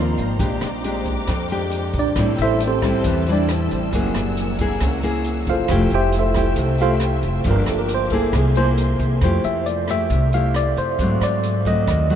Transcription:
Already playing: upright bass D#2, nylon-string guitar D#3 F3 A#3 C4, string section A#4 F5 A#5 C6
0.18 upright bass G#1, closed hi-hat
0.39 upright bass A#1, nylon-string guitar A#2 G#3 D4 G4, string section C5 G5 D6, kick, closed hi-hat
0.61 upright bass A#1, cross-stick, closed hi-hat
0.84 nylon-string guitar G#3 D4 G4, closed hi-hat
1.06 kick, closed hi-hat
1.27 upright bass F2, nylon-string guitar F2, kick, cross-stick, closed hi-hat
1.49 nylon-string guitar G#3 D4 G4, closed hi-hat
1.71 closed hi-hat
1.93 upright bass A#1, kick, closed hi-hat
1.99 tine electric piano D4 D5
2.16 upright bass A1, nylon-string guitar A2 G3 C4 E4, string section C5 A5 E6, kick, cross-stick, closed hi-hat
2.38 upright bass A1, tine electric piano E5, closed hi-hat
2.42 tine electric piano E4 A4 C5
2.60 closed hi-hat
2.67 tine electric piano C4 G4 A4 C5
2.82 nylon-string guitar G3 C4 E4, kick, cross-stick, closed hi-hat
3.04 upright bass E2, nylon-string guitar E3, kick, closed hi-hat
3.27 nylon-string guitar G3 C4 E4, closed hi-hat
3.32 tine electric piano D4 D5
3.49 cross-stick, closed hi-hat
3.71 upright bass A1, closed hi-hat
3.92 upright bass F#1, nylon-string guitar F#3 A#3 E4 G#4, string section A#4 F#5 G#5, kick, closed hi-hat
4.15 upright bass F#1, cross-stick, closed hi-hat
4.37 closed hi-hat
4.59 nylon-string guitar A#3 E4 G#4, kick, closed hi-hat
4.81 upright bass C#2, nylon-string guitar C#3, kick, cross-stick, closed hi-hat
5.03 nylon-string guitar A#3 E4 G#4, closed hi-hat
5.25 closed hi-hat
5.47 upright bass F#1, tine electric piano F4 A4 C5 F5, kick, closed hi-hat
5.68 upright bass F1, nylon-string guitar F3 A3 E4 G4, string section A4 E5 G5, kick, cross-stick, closed hi-hat
5.90 upright bass F1, closed hi-hat
5.94 tine electric piano G4 C5 E5 G5
6.12 closed hi-hat
6.19 tine electric piano E4 A4 C5 E5
6.34 nylon-string guitar A3 E4 G4, kick, cross-stick, closed hi-hat
6.56 upright bass C2, nylon-string guitar C3, kick, closed hi-hat
6.78 nylon-string guitar A3 E4 G4, tine electric piano F4 F5, closed hi-hat
6.82 tine electric piano A4 C5
7.00 cross-stick, closed hi-hat
7.23 upright bass F1, closed hi-hat
7.44 upright bass G1, nylon-string guitar G2 F3 A#3 D4, string section A#4 D6, kick, closed hi-hat
7.51 tine electric piano A#4
7.64 upright bass G1, tine electric piano A4, cross-stick, closed hi-hat
7.79 tine electric piano A#4
7.88 closed hi-hat
7.95 tine electric piano C5
8.10 nylon-string guitar A#3 E4 G#4, tine electric piano A4, kick, closed hi-hat
8.32 upright bass C2, nylon-string guitar C3, string section A#4 E5 G#5 C6, kick, cross-stick, closed hi-hat
8.38 tine electric piano G#4
8.55 nylon-string guitar A#3 E4 G#4, tine electric piano C5, closed hi-hat
8.78 closed hi-hat
8.99 upright bass C2, kick, closed hi-hat
9.21 upright bass F2, nylon-string guitar F3 A3 E4 G4, tine electric piano C5, kick, cross-stick, closed hi-hat
9.44 upright bass F2, tine electric piano E5, closed hi-hat
9.66 tine electric piano D5, closed hi-hat
9.88 nylon-string guitar A3 E4 G4, tine electric piano E5, cross-stick, closed hi-hat
10.10 upright bass C2, nylon-string guitar C3, kick, closed hi-hat
10.33 nylon-string guitar A3 E4 G4, tine electric piano F5, closed hi-hat
10.54 tine electric piano D5, cross-stick, closed hi-hat
10.77 upright bass F2, tine electric piano C5, closed hi-hat
10.99 upright bass G#2, nylon-string guitar G#2 F#3 A3 C4, kick, closed hi-hat
11.21 upright bass G#2, tine electric piano D5, cross-stick, closed hi-hat
11.43 closed hi-hat
11.65 nylon-string guitar F#3 A3 C4, tine electric piano D#5, kick, closed hi-hat
11.87 upright bass D#2, nylon-string guitar D#3, kick, cross-stick, closed hi-hat
12.10 nylon-string guitar F#3 A3 C4, closed hi-hat

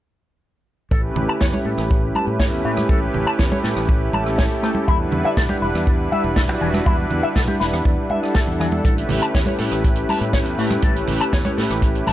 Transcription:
0.90 fingered electric bass A1, analog synth pad A3 C#4 E4 G4 B4, clean electric guitar A4, kick
1.16 fingered electric bass A1, low conga
1.28 clean electric guitar A5, muted fingered electric bass stroke
1.41 fingered electric bass E2, clean electric guitar C#5, kick, snare
1.53 clean electric guitar C#5, high conga
1.65 fingered electric bass A2, clean electric guitar A4
1.78 fingered electric bass A1, cross-stick
1.91 kick
2.15 clean electric guitar A5, high conga
2.27 fingered electric bass A2
2.39 analog synth pad A3 C#4 E4 G4 B4, clean electric guitar C#5, kick, snare
2.52 fingered electric bass E2
2.65 fingered electric bass A2, clean electric guitar A3
2.77 cross-stick, high conga
2.89 fingered electric bass A1, analog synth pad A3 C#4 E4 G4 B4, clean electric guitar A4, kick
3.14 fingered electric bass A1, low conga
3.27 clean electric guitar A5, muted fingered electric bass stroke
3.39 fingered electric bass E2, clean electric guitar C#5, kick, snare
3.52 clean electric guitar C#5, high conga
3.64 fingered electric bass A2, clean electric guitar A4, snare
3.76 fingered electric bass A1, cross-stick
3.89 kick
4.13 fingered electric bass A1, analog synth pad A3 C#4 E4 G4 A4, clean electric guitar A5, high conga
4.26 cross-stick
4.38 clean electric guitar C#5, kick, snare
4.63 clean electric guitar A3, cross-stick
4.75 high conga
4.87 fingered electric bass E2, analog synth pad G3 D4 E4 B4 F#5, clean electric guitar E4, kick
5.12 fingered electric bass E2, low conga
5.25 clean electric guitar E5, muted fingered electric bass stroke
5.37 fingered electric bass B1, clean electric guitar A4, kick, snare
5.49 clean electric guitar G4, high conga
5.62 fingered electric bass E1, clean electric guitar E4
5.74 fingered electric bass E2, cross-stick
5.87 kick
6.12 clean electric guitar E5, high conga
6.24 fingered electric bass E1
6.36 analog synth pad G3 D4 E4 F#4 B4, clean electric guitar A4, kick, snare
6.49 fingered electric bass B1
6.61 fingered electric bass E1, clean electric guitar E3
6.74 cross-stick, high conga
6.85 fingered electric bass E2, analog synth pad G3 D4 E4 B4 F#5, clean electric guitar E4, kick
7.11 fingered electric bass E2, low conga
7.23 clean electric guitar E5, muted fingered electric bass stroke
7.36 fingered electric bass B1, clean electric guitar A4, kick, snare
7.48 clean electric guitar G4, high conga
7.60 fingered electric bass E1, clean electric guitar E4, snare
7.73 fingered electric bass E2, cross-stick
7.85 fingered electric bass E2, kick
8.09 analog synth pad G3 D4 E4 A4 F#5, clean electric guitar E5, high conga
8.23 cross-stick
8.35 clean electric guitar A4, kick, snare
8.47 fingered electric bass E2
8.60 clean electric guitar E3, cross-stick
8.72 high conga
8.83 fingered electric bass A1, analog synth pad A3 C#4 E4 G4 B4, clean electric guitar A4, kick, closed hi-hat
8.98 closed hi-hat
9.09 fingered electric bass A1, open hi-hat, low conga
9.22 clean electric guitar A5, closed hi-hat
9.34 fingered electric bass E2, clean electric guitar C#5, kick, snare, closed hi-hat
9.46 clean electric guitar C#5, closed hi-hat, high conga
9.58 fingered electric bass A2, clean electric guitar A4, open hi-hat
9.71 fingered electric bass A1, cross-stick, closed hi-hat
9.84 kick, closed hi-hat
9.96 closed hi-hat
10.09 clean electric guitar A5, open hi-hat, high conga
10.21 fingered electric bass A2, closed hi-hat
10.33 analog synth pad A3 C#4 E4 G4 B4, clean electric guitar C#5, kick, snare, closed hi-hat
10.46 fingered electric bass E2, closed hi-hat
10.58 fingered electric bass A2, clean electric guitar A3, open hi-hat
10.70 cross-stick, closed hi-hat, high conga
10.82 fingered electric bass A1, analog synth pad A3 C#4 E4 G4 B4, clean electric guitar A4, kick, closed hi-hat
10.96 closed hi-hat
11.08 fingered electric bass A1, open hi-hat, low conga
11.20 clean electric guitar A5, muted fingered electric bass stroke, closed hi-hat
11.33 fingered electric bass E2, clean electric guitar C#5, kick, snare, closed hi-hat
11.45 clean electric guitar C#5, closed hi-hat, high conga
11.58 fingered electric bass A2, clean electric guitar A4, snare, open hi-hat
11.70 fingered electric bass A1, cross-stick, closed hi-hat
11.82 kick, closed hi-hat
11.95 closed hi-hat
12.06 fingered electric bass A1, analog synth pad A3 C#4 E4 G4 A4, clean electric guitar A5, open hi-hat, high conga

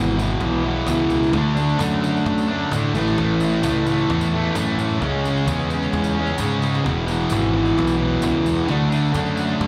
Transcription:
Already playing: picked electric bass G#1, distorted electric guitar E2 B2
0.00 distorted electric guitar E3
0.08 tambourine
0.18 distorted electric guitar E3, tambourine
0.22 distorted electric guitar B2
0.41 picked electric bass B1, cajon bass, cajon slap
0.65 distorted electric guitar B2 E3
0.87 picked electric bass C#2, distorted electric guitar E2 B2, cajon bass, cajon slap, tambourine
0.91 distorted electric guitar E3
1.10 picked electric bass C#2, tambourine
1.23 tambourine
1.33 picked electric bass D2, distorted electric guitar D3 A3 D4, cajon bass, cajon slap, tambourine
1.55 distorted electric guitar A3 D4, tambourine
1.69 tambourine
1.78 picked electric bass F#2, distorted electric guitar D3 A3 D4, cajon bass, cajon slap, tambourine
2.02 distorted electric guitar D4, tambourine
2.06 distorted electric guitar A3
2.17 tambourine
2.26 picked electric bass F#2, cajon bass, cajon slap
2.38 tambourine
2.48 distorted electric guitar A3 D4
2.71 picked electric bass A2, distorted electric guitar D3 A3, cajon bass, cajon slap, tambourine
2.75 distorted electric guitar D4
2.94 picked electric bass A1, distorted electric guitar E3 A3, tambourine
2.99 distorted electric guitar A2
3.07 tambourine
3.18 picked electric bass A1, distorted electric guitar A2 E3, cajon bass, cajon slap, tambourine
3.22 distorted electric guitar A3
3.40 distorted electric guitar E3 A3, tambourine
3.53 tambourine
3.62 picked electric bass C#2, distorted electric guitar A2 E3 A3, cajon bass, cajon slap, tambourine
3.87 distorted electric guitar A3, tambourine
3.91 distorted electric guitar E3
3.98 tambourine
4.10 picked electric bass E2, cajon bass, cajon slap
4.21 tambourine
4.32 distorted electric guitar E3 A3
4.55 picked electric bass F#2, distorted electric guitar A2 E3 A3, cajon bass, cajon slap, tambourine
4.77 picked electric bass F#2, tambourine
4.90 tambourine
5.00 picked electric bass C#2, distorted electric guitar C#3 G#3 C#4, cajon bass, cajon slap, tambourine
5.24 distorted electric guitar C#4, tambourine
5.28 distorted electric guitar G#3
5.37 tambourine
5.46 picked electric bass E2, distorted electric guitar C#3 G#3 C#4, cajon bass, cajon slap, tambourine
5.70 distorted electric guitar C#4, tambourine
5.74 distorted electric guitar G#3
5.82 tambourine
5.93 picked electric bass E2, cajon bass, cajon slap, tambourine
6.04 tambourine
6.15 distorted electric guitar C#4
6.19 distorted electric guitar G#3
6.27 tambourine
6.38 picked electric bass G#2, distorted electric guitar C#3 G#3 C#4, cajon bass, cajon slap, tambourine
6.52 cajon slap
6.62 cajon slap, tambourine
6.74 cajon slap, tambourine
6.84 picked electric bass E1, distorted electric guitar E2 B2 E3, cajon bass, cajon slap, tambourine
7.07 distorted electric guitar E3, tambourine
7.12 distorted electric guitar B2
7.20 tambourine
7.30 picked electric bass G#1, distorted electric guitar E2 B2, cajon bass, cajon slap, tambourine
7.34 distorted electric guitar E3
7.52 distorted electric guitar E3
7.56 distorted electric guitar B2
7.66 tambourine
7.77 picked electric bass B1, cajon bass, cajon slap
7.87 tambourine
7.97 distorted electric guitar E3
8.01 distorted electric guitar B2
8.21 picked electric bass C#2, distorted electric guitar E2 B2 E3, cajon bass, cajon slap, tambourine
8.46 picked electric bass E2, tambourine
8.58 tambourine
8.67 picked electric bass D2, distorted electric guitar D3 A3 D4, cajon bass, cajon slap, tambourine
8.90 distorted electric guitar D4, tambourine
8.94 distorted electric guitar A3
9.05 tambourine
9.13 picked electric bass F#2, distorted electric guitar D3 A3, cajon bass, cajon slap, tambourine
9.17 distorted electric guitar D4
9.26 tambourine
9.35 distorted electric guitar D4, tambourine
9.39 distorted electric guitar A3
9.48 tambourine
9.60 picked electric bass F#2, cajon bass, cajon slap

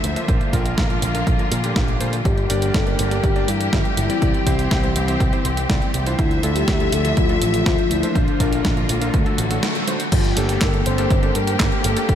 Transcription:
Already playing: string section D3 F3 A3 E5, electric grand piano D4 E4 F4 C5
0.04 picked electric bass D2, closed hi-hat
0.16 electric grand piano A#3 D4 F4 C5, closed hi-hat
0.28 picked electric bass A#1, string section F3 A#3 F4, kick, closed hi-hat
0.41 closed hi-hat
0.53 picked electric bass A#1, electric grand piano A#3 D4 F4 A#4, kick, closed hi-hat
0.66 closed hi-hat
0.78 picked electric bass A#1, kick, snare, closed hi-hat
0.90 electric grand piano A#3 D4 F4 A#4, closed hi-hat
1.02 picked electric bass A#1, closed hi-hat
1.15 electric grand piano A#3 D4 F4 A#4, closed hi-hat
1.27 picked electric bass A#1, kick, closed hi-hat
1.39 electric grand piano A#3 D4 F4 A#4, closed hi-hat
1.51 picked electric bass A#2, closed hi-hat
1.64 electric grand piano A#3 D4 F4 G4, closed hi-hat
1.76 picked electric bass A#1, kick, snare, closed hi-hat
1.88 closed hi-hat
2.01 picked electric bass A#2, electric grand piano A#3 D4 F4 C5, closed hi-hat
2.13 closed hi-hat
2.25 picked electric bass G1, string section G3 A#3 G4, soft synth lead G4, kick, closed hi-hat
2.38 closed hi-hat
2.50 picked electric bass G1, electric grand piano D4 G4 A#4 D5, soft synth lead G4, closed hi-hat
2.62 closed hi-hat
2.74 picked electric bass G1, soft synth lead A4, kick, snare, closed hi-hat
2.87 electric grand piano D4 G4 A#4 D5, soft synth lead A#4, closed hi-hat
2.99 picked electric bass G1, closed hi-hat
3.11 electric grand piano D4 G4 A#4 D5, closed hi-hat
3.24 picked electric bass G1, soft synth lead G4, kick, closed hi-hat
3.36 electric grand piano D4 G4 A#4 D5, closed hi-hat
3.48 picked electric bass G2, soft synth lead E4, closed hi-hat
3.61 closed hi-hat
3.73 picked electric bass G1, electric grand piano D4 G4 A#4 E5, soft synth lead F4, kick, snare, closed hi-hat
3.85 closed hi-hat
3.97 picked electric bass G1, soft synth lead E4, closed hi-hat
4.10 electric grand piano C4 E4 G4 D5, closed hi-hat
4.22 picked electric bass C2, string section E3 C4, kick, closed hi-hat
4.34 closed hi-hat
4.46 picked electric bass C2, electric grand piano C4 E4 G4 C5, kick, closed hi-hat
4.59 closed hi-hat
4.71 picked electric bass C2, kick, snare, closed hi-hat
4.83 electric grand piano C4 E4 G4 C5, closed hi-hat
4.96 picked electric bass C2, closed hi-hat
5.08 electric grand piano C4 E4 G4 C5, closed hi-hat
5.20 picked electric bass C2, kick, closed hi-hat
5.33 electric grand piano C4 E4 G4 C5, closed hi-hat
5.45 picked electric bass C2, closed hi-hat
5.57 closed hi-hat
5.70 picked electric bass C2, electric grand piano C4 E4 G4 D5, kick, snare, closed hi-hat
5.82 closed hi-hat
5.94 picked electric bass C2, closed hi-hat
6.06 electric grand piano D4 E4 F4 C5, closed hi-hat
6.19 picked electric bass D2, string section D3 F3 A3 E5, soft synth lead E4, kick, closed hi-hat
6.31 closed hi-hat
6.43 picked electric bass D2, electric grand piano D4 E4 F4 A4, closed hi-hat
6.56 soft synth lead G4, closed hi-hat
6.68 picked electric bass D2, kick, snare, closed hi-hat
6.80 electric grand piano D4 E4 F4 A4, closed hi-hat
6.92 picked electric bass D2, soft synth lead A4, closed hi-hat
7.05 electric grand piano D4 E4 F4 A4, closed hi-hat
7.17 picked electric bass D2, soft synth lead F4, kick, closed hi-hat
7.29 electric grand piano D4 E4 F4 A4, closed hi-hat
7.42 picked electric bass A1, closed hi-hat
7.54 closed hi-hat
7.66 picked electric bass D2, electric grand piano D4 E4 F4 C5, soft synth lead F4, kick, snare, closed hi-hat
7.79 closed hi-hat
7.91 picked electric bass D2, soft synth lead E4, closed hi-hat
8.03 electric grand piano A#3 D4 F4 C5, closed hi-hat
8.15 picked electric bass A#1, string section D3 A#3 F4, soft synth lead D4, kick, closed hi-hat
8.28 closed hi-hat
8.40 picked electric bass A#1, electric grand piano A#3 D4 F4 A#4, kick, closed hi-hat
8.53 closed hi-hat
8.65 picked electric bass A#1, kick, snare, closed hi-hat
8.77 electric grand piano A#3 D4 F4 A#4, closed hi-hat
8.89 picked electric bass A#1, closed hi-hat
9.01 electric grand piano A#3 D4 F4 A#4, closed hi-hat
9.14 picked electric bass D2, string section F#3 A3 F#4, kick, closed hi-hat
9.26 electric grand piano A3 D4 F#4 A4, closed hi-hat
9.38 picked electric bass A1, closed hi-hat
9.51 electric grand piano A3 D4 F#4 A4, closed hi-hat
9.63 snare, closed hi-hat
9.75 closed hi-hat
9.87 electric grand piano A3 D4 F#4 C5, closed hi-hat
10.00 closed hi-hat
10.12 picked electric bass G1, string section D3 A#3 G4, soft synth lead F4, kick, closed hi-hat, crash
10.24 closed hi-hat
10.37 picked electric bass G1, electric grand piano A#3 D4 G4 A4, soft synth lead G4, closed hi-hat
10.49 closed hi-hat
10.61 picked electric bass G1, soft synth lead A#4, kick, snare, clap, closed hi-hat
10.74 electric grand piano A#3 D4 G4 A4, closed hi-hat
10.86 picked electric bass G1, soft synth lead C5, closed hi-hat
10.98 electric grand piano A#3 D4 G4 A4, closed hi-hat
11.10 picked electric bass G1, kick, closed hi-hat
11.23 electric grand piano A#3 D4 G4 A4, closed hi-hat
11.35 picked electric bass G2, soft synth lead A#4, closed hi-hat
11.47 closed hi-hat
11.60 picked electric bass G1, electric grand piano A#3 D4 G4 A#4, kick, snare, clap, closed hi-hat
11.72 closed hi-hat
11.84 picked electric bass G1, soft synth lead A4, closed hi-hat
11.97 electric grand piano A#3 D4 G4 A4, closed hi-hat
12.09 picked electric bass D2, kick, closed hi-hat

